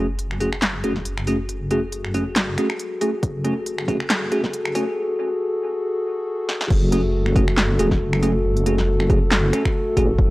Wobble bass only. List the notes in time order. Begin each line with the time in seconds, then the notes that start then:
Already playing: F#1
0.84 E1
1.06 F#1
1.49 F#1
3.23 F#1
4.32 E1
4.53 F#1
6.71 F#1
7.79 E1
8.01 F#1
8.44 F#1
9.97 A1
10.18 F#1